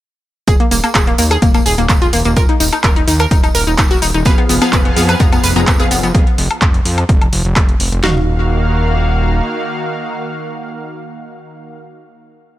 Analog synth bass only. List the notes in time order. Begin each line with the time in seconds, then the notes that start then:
0.48 D#1
0.71 D#1
0.95 D#1
1.19 D#2
1.42 D#1
1.66 D#1
1.78 D#1
1.89 D#1
2.13 D#1
2.25 D#1
2.37 D#1
2.60 D#1
2.84 D#1
3.08 D#2
3.31 D#1
3.55 D#1
3.67 D#1
3.78 D#1
4.02 D#1
4.14 D#1
4.26 F1
4.49 F1
4.73 F1
4.97 F2
5.20 F1
5.44 F1
5.56 F1
5.67 F1
5.91 F1
6.03 F1
6.15 F1
6.38 F1
6.62 F1
6.85 F2
7.09 F1
7.33 F1
7.45 F1
7.56 F1
7.80 F1
7.92 F1
8.04 D#1